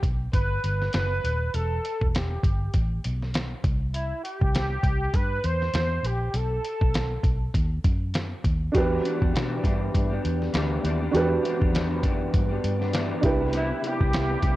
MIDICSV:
0, 0, Header, 1, 6, 480
1, 0, Start_track
1, 0, Key_signature, 1, "minor"
1, 0, Tempo, 600000
1, 1230, Time_signature, 4, 2, 24, 8
1, 11650, End_track
2, 0, Start_track
2, 0, Title_t, "Trumpet"
2, 0, Program_c, 0, 56
2, 270, Note_on_c, 0, 71, 100
2, 718, Note_off_c, 0, 71, 0
2, 755, Note_on_c, 0, 71, 100
2, 1236, Note_on_c, 0, 69, 94
2, 1248, Note_off_c, 0, 71, 0
2, 1668, Note_off_c, 0, 69, 0
2, 1668, Note_on_c, 0, 69, 52
2, 1734, Note_on_c, 0, 67, 72
2, 1746, Note_off_c, 0, 69, 0
2, 2203, Note_off_c, 0, 67, 0
2, 3156, Note_on_c, 0, 64, 85
2, 3378, Note_off_c, 0, 64, 0
2, 3391, Note_on_c, 0, 67, 93
2, 4120, Note_on_c, 0, 71, 103
2, 4132, Note_off_c, 0, 67, 0
2, 4364, Note_on_c, 0, 72, 108
2, 4376, Note_off_c, 0, 71, 0
2, 4852, Note_on_c, 0, 67, 87
2, 4864, Note_off_c, 0, 72, 0
2, 5088, Note_on_c, 0, 69, 94
2, 5100, Note_off_c, 0, 67, 0
2, 6042, Note_off_c, 0, 69, 0
2, 10853, Note_on_c, 0, 64, 96
2, 11099, Note_on_c, 0, 67, 94
2, 11111, Note_off_c, 0, 64, 0
2, 11650, Note_off_c, 0, 67, 0
2, 11650, End_track
3, 0, Start_track
3, 0, Title_t, "Upright piano"
3, 0, Program_c, 1, 0
3, 6974, Note_on_c, 1, 62, 70
3, 6988, Note_on_c, 1, 66, 63
3, 6999, Note_on_c, 1, 67, 66
3, 7017, Note_on_c, 1, 71, 80
3, 7164, Control_c, 1, 64, 127
3, 8870, Note_off_c, 1, 62, 0
3, 8878, Note_off_c, 1, 66, 0
3, 8883, Note_off_c, 1, 67, 0
3, 8891, Note_on_c, 1, 62, 77
3, 8892, Note_off_c, 1, 71, 0
3, 8901, Note_on_c, 1, 66, 67
3, 8917, Note_on_c, 1, 67, 63
3, 8933, Note_on_c, 1, 71, 81
3, 10547, Note_off_c, 1, 62, 0
3, 10552, Note_off_c, 1, 66, 0
3, 10560, Note_off_c, 1, 67, 0
3, 10568, Note_off_c, 1, 71, 0
3, 10568, Note_on_c, 1, 62, 72
3, 10583, Note_on_c, 1, 64, 61
3, 10594, Note_on_c, 1, 67, 65
3, 10601, Control_c, 1, 64, 0
3, 10605, Note_on_c, 1, 71, 81
3, 10751, Control_c, 1, 64, 127
3, 11650, Note_off_c, 1, 62, 0
3, 11650, Note_off_c, 1, 64, 0
3, 11650, Note_off_c, 1, 67, 0
3, 11650, Note_off_c, 1, 71, 0
3, 11650, End_track
4, 0, Start_track
4, 0, Title_t, "Clean electric guitar"
4, 0, Program_c, 2, 27
4, 6988, Note_on_c, 2, 52, 89
4, 6995, Note_on_c, 2, 59, 86
4, 6996, Note_on_c, 2, 62, 97
4, 7004, Note_on_c, 2, 67, 94
4, 7218, Note_off_c, 2, 52, 0
4, 7228, Note_on_c, 2, 52, 60
4, 7229, Note_off_c, 2, 59, 0
4, 7236, Note_off_c, 2, 62, 0
4, 7238, Note_on_c, 2, 59, 61
4, 7239, Note_off_c, 2, 67, 0
4, 7248, Note_on_c, 2, 62, 67
4, 7254, Note_on_c, 2, 67, 63
4, 7346, Note_off_c, 2, 67, 0
4, 7355, Note_on_c, 2, 67, 61
4, 7362, Note_off_c, 2, 62, 0
4, 7363, Note_off_c, 2, 52, 0
4, 7368, Note_off_c, 2, 59, 0
4, 7371, Note_on_c, 2, 62, 55
4, 7386, Note_on_c, 2, 59, 45
4, 7460, Note_off_c, 2, 59, 0
4, 7461, Note_on_c, 2, 52, 81
4, 7465, Note_off_c, 2, 62, 0
4, 7469, Note_off_c, 2, 67, 0
4, 7470, Note_on_c, 2, 59, 84
4, 7475, Note_on_c, 2, 62, 86
4, 7478, Note_on_c, 2, 67, 87
4, 7696, Note_off_c, 2, 52, 0
4, 7701, Note_off_c, 2, 59, 0
4, 7706, Note_on_c, 2, 52, 67
4, 7709, Note_off_c, 2, 62, 0
4, 7711, Note_on_c, 2, 59, 65
4, 7716, Note_off_c, 2, 67, 0
4, 7719, Note_on_c, 2, 62, 70
4, 7729, Note_on_c, 2, 67, 69
4, 8067, Note_off_c, 2, 67, 0
4, 8076, Note_on_c, 2, 67, 52
4, 8082, Note_off_c, 2, 52, 0
4, 8083, Note_off_c, 2, 62, 0
4, 8084, Note_off_c, 2, 59, 0
4, 8092, Note_on_c, 2, 62, 43
4, 8101, Note_on_c, 2, 59, 40
4, 8416, Note_off_c, 2, 59, 0
4, 8421, Note_on_c, 2, 52, 85
4, 8424, Note_off_c, 2, 62, 0
4, 8426, Note_on_c, 2, 59, 86
4, 8429, Note_off_c, 2, 67, 0
4, 8434, Note_on_c, 2, 62, 93
4, 8438, Note_on_c, 2, 67, 89
4, 8650, Note_off_c, 2, 52, 0
4, 8659, Note_on_c, 2, 52, 61
4, 8662, Note_off_c, 2, 59, 0
4, 8672, Note_on_c, 2, 59, 70
4, 8673, Note_off_c, 2, 62, 0
4, 8675, Note_off_c, 2, 67, 0
4, 8683, Note_on_c, 2, 62, 65
4, 8687, Note_on_c, 2, 67, 70
4, 8792, Note_off_c, 2, 67, 0
4, 8798, Note_off_c, 2, 52, 0
4, 8802, Note_on_c, 2, 67, 60
4, 8804, Note_off_c, 2, 59, 0
4, 8807, Note_off_c, 2, 62, 0
4, 8816, Note_on_c, 2, 62, 51
4, 8826, Note_on_c, 2, 59, 50
4, 8903, Note_on_c, 2, 52, 90
4, 8904, Note_off_c, 2, 59, 0
4, 8908, Note_off_c, 2, 62, 0
4, 8911, Note_off_c, 2, 67, 0
4, 8914, Note_on_c, 2, 59, 85
4, 8918, Note_on_c, 2, 62, 100
4, 8921, Note_on_c, 2, 67, 98
4, 9029, Note_off_c, 2, 67, 0
4, 9038, Note_on_c, 2, 67, 52
4, 9040, Note_off_c, 2, 52, 0
4, 9044, Note_off_c, 2, 62, 0
4, 9045, Note_off_c, 2, 59, 0
4, 9053, Note_on_c, 2, 62, 47
4, 9065, Note_on_c, 2, 59, 47
4, 9137, Note_off_c, 2, 59, 0
4, 9138, Note_on_c, 2, 52, 67
4, 9147, Note_off_c, 2, 62, 0
4, 9147, Note_on_c, 2, 59, 68
4, 9149, Note_off_c, 2, 67, 0
4, 9157, Note_on_c, 2, 62, 62
4, 9162, Note_on_c, 2, 67, 74
4, 9259, Note_off_c, 2, 67, 0
4, 9268, Note_off_c, 2, 62, 0
4, 9269, Note_on_c, 2, 67, 61
4, 9277, Note_off_c, 2, 52, 0
4, 9278, Note_on_c, 2, 62, 53
4, 9279, Note_off_c, 2, 59, 0
4, 9289, Note_on_c, 2, 59, 49
4, 9372, Note_off_c, 2, 59, 0
4, 9377, Note_on_c, 2, 52, 80
4, 9382, Note_off_c, 2, 62, 0
4, 9382, Note_on_c, 2, 59, 83
4, 9384, Note_off_c, 2, 67, 0
4, 9392, Note_on_c, 2, 62, 90
4, 9398, Note_on_c, 2, 67, 86
4, 9606, Note_off_c, 2, 52, 0
4, 9615, Note_on_c, 2, 52, 63
4, 9617, Note_off_c, 2, 59, 0
4, 9619, Note_off_c, 2, 62, 0
4, 9627, Note_on_c, 2, 59, 60
4, 9629, Note_on_c, 2, 62, 69
4, 9632, Note_off_c, 2, 67, 0
4, 9642, Note_on_c, 2, 67, 69
4, 9981, Note_off_c, 2, 67, 0
4, 9991, Note_on_c, 2, 67, 57
4, 9993, Note_off_c, 2, 62, 0
4, 9995, Note_off_c, 2, 52, 0
4, 10000, Note_off_c, 2, 59, 0
4, 10002, Note_on_c, 2, 62, 48
4, 10015, Note_on_c, 2, 59, 50
4, 10223, Note_off_c, 2, 67, 0
4, 10233, Note_on_c, 2, 67, 53
4, 10240, Note_off_c, 2, 62, 0
4, 10248, Note_off_c, 2, 59, 0
4, 10250, Note_on_c, 2, 62, 54
4, 10262, Note_on_c, 2, 59, 48
4, 10340, Note_on_c, 2, 52, 81
4, 10341, Note_off_c, 2, 59, 0
4, 10345, Note_off_c, 2, 67, 0
4, 10346, Note_off_c, 2, 62, 0
4, 10351, Note_on_c, 2, 59, 83
4, 10356, Note_on_c, 2, 62, 95
4, 10363, Note_on_c, 2, 67, 98
4, 10571, Note_off_c, 2, 59, 0
4, 10576, Note_on_c, 2, 48, 67
4, 10580, Note_on_c, 2, 59, 61
4, 10585, Note_off_c, 2, 52, 0
4, 10589, Note_off_c, 2, 62, 0
4, 10589, Note_off_c, 2, 67, 0
4, 10592, Note_on_c, 2, 64, 63
4, 10599, Note_on_c, 2, 67, 71
4, 10699, Note_off_c, 2, 67, 0
4, 10709, Note_on_c, 2, 67, 57
4, 10714, Note_off_c, 2, 48, 0
4, 10715, Note_off_c, 2, 64, 0
4, 10717, Note_off_c, 2, 59, 0
4, 10724, Note_on_c, 2, 64, 49
4, 10736, Note_on_c, 2, 59, 45
4, 10817, Note_off_c, 2, 59, 0
4, 10822, Note_on_c, 2, 48, 85
4, 10823, Note_off_c, 2, 67, 0
4, 10827, Note_off_c, 2, 64, 0
4, 10827, Note_on_c, 2, 59, 82
4, 10837, Note_on_c, 2, 64, 79
4, 10840, Note_on_c, 2, 67, 89
4, 10944, Note_off_c, 2, 67, 0
4, 10953, Note_on_c, 2, 67, 46
4, 10955, Note_off_c, 2, 64, 0
4, 10957, Note_off_c, 2, 48, 0
4, 10959, Note_off_c, 2, 59, 0
4, 10965, Note_on_c, 2, 64, 40
4, 10980, Note_on_c, 2, 59, 42
4, 11053, Note_on_c, 2, 48, 59
4, 11056, Note_off_c, 2, 59, 0
4, 11065, Note_off_c, 2, 64, 0
4, 11065, Note_off_c, 2, 67, 0
4, 11065, Note_on_c, 2, 59, 54
4, 11074, Note_on_c, 2, 64, 53
4, 11076, Note_on_c, 2, 67, 61
4, 11180, Note_off_c, 2, 67, 0
4, 11189, Note_on_c, 2, 67, 52
4, 11192, Note_off_c, 2, 48, 0
4, 11193, Note_off_c, 2, 64, 0
4, 11198, Note_off_c, 2, 59, 0
4, 11203, Note_on_c, 2, 64, 51
4, 11212, Note_on_c, 2, 59, 42
4, 11297, Note_off_c, 2, 59, 0
4, 11302, Note_off_c, 2, 67, 0
4, 11304, Note_off_c, 2, 64, 0
4, 11305, Note_on_c, 2, 48, 76
4, 11307, Note_on_c, 2, 59, 76
4, 11314, Note_on_c, 2, 64, 76
4, 11321, Note_on_c, 2, 67, 80
4, 11526, Note_off_c, 2, 48, 0
4, 11536, Note_on_c, 2, 48, 55
4, 11537, Note_off_c, 2, 59, 0
4, 11547, Note_off_c, 2, 64, 0
4, 11547, Note_on_c, 2, 59, 63
4, 11551, Note_off_c, 2, 67, 0
4, 11556, Note_on_c, 2, 64, 62
4, 11560, Note_on_c, 2, 67, 56
4, 11650, Note_off_c, 2, 48, 0
4, 11650, Note_off_c, 2, 59, 0
4, 11650, Note_off_c, 2, 64, 0
4, 11650, Note_off_c, 2, 67, 0
4, 11650, End_track
5, 0, Start_track
5, 0, Title_t, "Fingered electric bass"
5, 0, Program_c, 3, 33
5, 21, Note_on_c, 3, 35, 85
5, 216, Note_off_c, 3, 35, 0
5, 266, Note_on_c, 3, 31, 86
5, 459, Note_off_c, 3, 31, 0
5, 511, Note_on_c, 3, 31, 84
5, 702, Note_off_c, 3, 31, 0
5, 753, Note_on_c, 3, 30, 89
5, 943, Note_off_c, 3, 30, 0
5, 991, Note_on_c, 3, 27, 78
5, 1183, Note_off_c, 3, 27, 0
5, 1233, Note_on_c, 3, 28, 103
5, 1424, Note_off_c, 3, 28, 0
5, 1613, Note_on_c, 3, 28, 93
5, 1887, Note_off_c, 3, 28, 0
5, 1946, Note_on_c, 3, 31, 82
5, 2141, Note_off_c, 3, 31, 0
5, 2193, Note_on_c, 3, 33, 75
5, 2385, Note_off_c, 3, 33, 0
5, 2443, Note_on_c, 3, 35, 82
5, 2823, Note_off_c, 3, 35, 0
5, 2910, Note_on_c, 3, 36, 86
5, 3296, Note_off_c, 3, 36, 0
5, 3533, Note_on_c, 3, 36, 101
5, 3809, Note_off_c, 3, 36, 0
5, 3867, Note_on_c, 3, 36, 87
5, 4062, Note_off_c, 3, 36, 0
5, 4112, Note_on_c, 3, 43, 82
5, 4305, Note_off_c, 3, 43, 0
5, 4353, Note_on_c, 3, 40, 78
5, 4546, Note_off_c, 3, 40, 0
5, 4590, Note_on_c, 3, 40, 90
5, 4784, Note_off_c, 3, 40, 0
5, 4824, Note_on_c, 3, 34, 77
5, 5021, Note_off_c, 3, 34, 0
5, 5071, Note_on_c, 3, 35, 96
5, 5265, Note_off_c, 3, 35, 0
5, 5453, Note_on_c, 3, 35, 86
5, 5729, Note_off_c, 3, 35, 0
5, 5790, Note_on_c, 3, 35, 81
5, 5984, Note_off_c, 3, 35, 0
5, 6037, Note_on_c, 3, 39, 80
5, 6228, Note_off_c, 3, 39, 0
5, 6275, Note_on_c, 3, 42, 79
5, 6659, Note_off_c, 3, 42, 0
5, 6756, Note_on_c, 3, 39, 80
5, 6948, Note_off_c, 3, 39, 0
5, 6995, Note_on_c, 3, 40, 98
5, 7187, Note_off_c, 3, 40, 0
5, 7374, Note_on_c, 3, 40, 96
5, 7457, Note_off_c, 3, 40, 0
5, 7475, Note_on_c, 3, 47, 77
5, 7667, Note_off_c, 3, 47, 0
5, 7714, Note_on_c, 3, 43, 85
5, 7906, Note_off_c, 3, 43, 0
5, 7959, Note_on_c, 3, 43, 85
5, 8149, Note_off_c, 3, 43, 0
5, 8199, Note_on_c, 3, 40, 75
5, 8388, Note_off_c, 3, 40, 0
5, 8435, Note_on_c, 3, 38, 93
5, 8626, Note_off_c, 3, 38, 0
5, 8673, Note_on_c, 3, 39, 85
5, 8864, Note_off_c, 3, 39, 0
5, 8911, Note_on_c, 3, 40, 96
5, 9103, Note_off_c, 3, 40, 0
5, 9293, Note_on_c, 3, 40, 95
5, 9627, Note_off_c, 3, 40, 0
5, 9627, Note_on_c, 3, 42, 87
5, 9821, Note_off_c, 3, 42, 0
5, 9872, Note_on_c, 3, 43, 80
5, 10063, Note_off_c, 3, 43, 0
5, 10111, Note_on_c, 3, 43, 81
5, 10494, Note_off_c, 3, 43, 0
5, 10587, Note_on_c, 3, 36, 91
5, 10971, Note_off_c, 3, 36, 0
5, 11204, Note_on_c, 3, 36, 96
5, 11480, Note_off_c, 3, 36, 0
5, 11537, Note_on_c, 3, 36, 89
5, 11650, Note_off_c, 3, 36, 0
5, 11650, End_track
6, 0, Start_track
6, 0, Title_t, "Drums"
6, 23, Note_on_c, 9, 36, 79
6, 27, Note_on_c, 9, 42, 66
6, 103, Note_off_c, 9, 36, 0
6, 107, Note_off_c, 9, 42, 0
6, 267, Note_on_c, 9, 36, 76
6, 269, Note_on_c, 9, 42, 80
6, 347, Note_off_c, 9, 36, 0
6, 349, Note_off_c, 9, 42, 0
6, 511, Note_on_c, 9, 42, 79
6, 591, Note_off_c, 9, 42, 0
6, 653, Note_on_c, 9, 38, 30
6, 733, Note_off_c, 9, 38, 0
6, 743, Note_on_c, 9, 42, 81
6, 753, Note_on_c, 9, 38, 107
6, 823, Note_off_c, 9, 42, 0
6, 833, Note_off_c, 9, 38, 0
6, 997, Note_on_c, 9, 42, 77
6, 1077, Note_off_c, 9, 42, 0
6, 1232, Note_on_c, 9, 42, 88
6, 1312, Note_off_c, 9, 42, 0
6, 1478, Note_on_c, 9, 42, 68
6, 1558, Note_off_c, 9, 42, 0
6, 1611, Note_on_c, 9, 36, 85
6, 1691, Note_off_c, 9, 36, 0
6, 1718, Note_on_c, 9, 42, 95
6, 1726, Note_on_c, 9, 38, 99
6, 1798, Note_off_c, 9, 42, 0
6, 1806, Note_off_c, 9, 38, 0
6, 1947, Note_on_c, 9, 36, 85
6, 1953, Note_on_c, 9, 42, 65
6, 2027, Note_off_c, 9, 36, 0
6, 2033, Note_off_c, 9, 42, 0
6, 2189, Note_on_c, 9, 42, 84
6, 2191, Note_on_c, 9, 36, 72
6, 2269, Note_off_c, 9, 42, 0
6, 2271, Note_off_c, 9, 36, 0
6, 2435, Note_on_c, 9, 42, 79
6, 2515, Note_off_c, 9, 42, 0
6, 2579, Note_on_c, 9, 38, 32
6, 2659, Note_off_c, 9, 38, 0
6, 2673, Note_on_c, 9, 42, 84
6, 2683, Note_on_c, 9, 38, 113
6, 2753, Note_off_c, 9, 42, 0
6, 2763, Note_off_c, 9, 38, 0
6, 2912, Note_on_c, 9, 36, 103
6, 2912, Note_on_c, 9, 42, 76
6, 2992, Note_off_c, 9, 36, 0
6, 2992, Note_off_c, 9, 42, 0
6, 3154, Note_on_c, 9, 42, 92
6, 3234, Note_off_c, 9, 42, 0
6, 3400, Note_on_c, 9, 42, 69
6, 3480, Note_off_c, 9, 42, 0
6, 3532, Note_on_c, 9, 36, 84
6, 3612, Note_off_c, 9, 36, 0
6, 3638, Note_on_c, 9, 42, 96
6, 3646, Note_on_c, 9, 38, 109
6, 3718, Note_off_c, 9, 42, 0
6, 3726, Note_off_c, 9, 38, 0
6, 3866, Note_on_c, 9, 36, 86
6, 3870, Note_on_c, 9, 42, 70
6, 3946, Note_off_c, 9, 36, 0
6, 3950, Note_off_c, 9, 42, 0
6, 4110, Note_on_c, 9, 36, 75
6, 4110, Note_on_c, 9, 42, 85
6, 4190, Note_off_c, 9, 36, 0
6, 4190, Note_off_c, 9, 42, 0
6, 4351, Note_on_c, 9, 42, 77
6, 4431, Note_off_c, 9, 42, 0
6, 4496, Note_on_c, 9, 38, 30
6, 4576, Note_off_c, 9, 38, 0
6, 4589, Note_on_c, 9, 42, 82
6, 4599, Note_on_c, 9, 38, 115
6, 4669, Note_off_c, 9, 42, 0
6, 4679, Note_off_c, 9, 38, 0
6, 4836, Note_on_c, 9, 42, 82
6, 4916, Note_off_c, 9, 42, 0
6, 5070, Note_on_c, 9, 42, 96
6, 5150, Note_off_c, 9, 42, 0
6, 5316, Note_on_c, 9, 42, 67
6, 5396, Note_off_c, 9, 42, 0
6, 5451, Note_on_c, 9, 36, 82
6, 5531, Note_off_c, 9, 36, 0
6, 5555, Note_on_c, 9, 42, 93
6, 5563, Note_on_c, 9, 38, 104
6, 5635, Note_off_c, 9, 42, 0
6, 5643, Note_off_c, 9, 38, 0
6, 5788, Note_on_c, 9, 36, 83
6, 5791, Note_on_c, 9, 42, 63
6, 5868, Note_off_c, 9, 36, 0
6, 5871, Note_off_c, 9, 42, 0
6, 6034, Note_on_c, 9, 36, 82
6, 6037, Note_on_c, 9, 42, 84
6, 6114, Note_off_c, 9, 36, 0
6, 6117, Note_off_c, 9, 42, 0
6, 6275, Note_on_c, 9, 36, 83
6, 6275, Note_on_c, 9, 42, 77
6, 6355, Note_off_c, 9, 36, 0
6, 6355, Note_off_c, 9, 42, 0
6, 6511, Note_on_c, 9, 42, 85
6, 6521, Note_on_c, 9, 38, 114
6, 6591, Note_off_c, 9, 42, 0
6, 6601, Note_off_c, 9, 38, 0
6, 6753, Note_on_c, 9, 36, 87
6, 6756, Note_on_c, 9, 42, 79
6, 6833, Note_off_c, 9, 36, 0
6, 6836, Note_off_c, 9, 42, 0
6, 6996, Note_on_c, 9, 36, 94
6, 6997, Note_on_c, 9, 42, 92
6, 7076, Note_off_c, 9, 36, 0
6, 7077, Note_off_c, 9, 42, 0
6, 7243, Note_on_c, 9, 42, 72
6, 7323, Note_off_c, 9, 42, 0
6, 7374, Note_on_c, 9, 36, 86
6, 7454, Note_off_c, 9, 36, 0
6, 7485, Note_on_c, 9, 42, 88
6, 7494, Note_on_c, 9, 38, 107
6, 7565, Note_off_c, 9, 42, 0
6, 7574, Note_off_c, 9, 38, 0
6, 7711, Note_on_c, 9, 36, 84
6, 7718, Note_on_c, 9, 42, 66
6, 7791, Note_off_c, 9, 36, 0
6, 7798, Note_off_c, 9, 42, 0
6, 7957, Note_on_c, 9, 36, 71
6, 7959, Note_on_c, 9, 42, 84
6, 8037, Note_off_c, 9, 36, 0
6, 8039, Note_off_c, 9, 42, 0
6, 8200, Note_on_c, 9, 42, 83
6, 8280, Note_off_c, 9, 42, 0
6, 8336, Note_on_c, 9, 38, 31
6, 8416, Note_off_c, 9, 38, 0
6, 8431, Note_on_c, 9, 42, 78
6, 8441, Note_on_c, 9, 38, 117
6, 8511, Note_off_c, 9, 42, 0
6, 8521, Note_off_c, 9, 38, 0
6, 8678, Note_on_c, 9, 42, 78
6, 8758, Note_off_c, 9, 42, 0
6, 8918, Note_on_c, 9, 42, 90
6, 8998, Note_off_c, 9, 42, 0
6, 9161, Note_on_c, 9, 42, 71
6, 9241, Note_off_c, 9, 42, 0
6, 9292, Note_on_c, 9, 36, 84
6, 9372, Note_off_c, 9, 36, 0
6, 9399, Note_on_c, 9, 42, 92
6, 9407, Note_on_c, 9, 38, 113
6, 9479, Note_off_c, 9, 42, 0
6, 9487, Note_off_c, 9, 38, 0
6, 9626, Note_on_c, 9, 36, 80
6, 9627, Note_on_c, 9, 42, 71
6, 9706, Note_off_c, 9, 36, 0
6, 9707, Note_off_c, 9, 42, 0
6, 9870, Note_on_c, 9, 36, 78
6, 9870, Note_on_c, 9, 42, 86
6, 9950, Note_off_c, 9, 36, 0
6, 9950, Note_off_c, 9, 42, 0
6, 10112, Note_on_c, 9, 42, 82
6, 10192, Note_off_c, 9, 42, 0
6, 10254, Note_on_c, 9, 38, 30
6, 10334, Note_off_c, 9, 38, 0
6, 10346, Note_on_c, 9, 42, 84
6, 10356, Note_on_c, 9, 38, 111
6, 10426, Note_off_c, 9, 42, 0
6, 10436, Note_off_c, 9, 38, 0
6, 10584, Note_on_c, 9, 42, 88
6, 10587, Note_on_c, 9, 36, 102
6, 10664, Note_off_c, 9, 42, 0
6, 10667, Note_off_c, 9, 36, 0
6, 10823, Note_on_c, 9, 42, 96
6, 10903, Note_off_c, 9, 42, 0
6, 11070, Note_on_c, 9, 42, 72
6, 11150, Note_off_c, 9, 42, 0
6, 11204, Note_on_c, 9, 36, 78
6, 11284, Note_off_c, 9, 36, 0
6, 11306, Note_on_c, 9, 42, 86
6, 11314, Note_on_c, 9, 38, 104
6, 11386, Note_off_c, 9, 42, 0
6, 11394, Note_off_c, 9, 38, 0
6, 11539, Note_on_c, 9, 36, 81
6, 11540, Note_on_c, 9, 42, 68
6, 11619, Note_off_c, 9, 36, 0
6, 11620, Note_off_c, 9, 42, 0
6, 11650, End_track
0, 0, End_of_file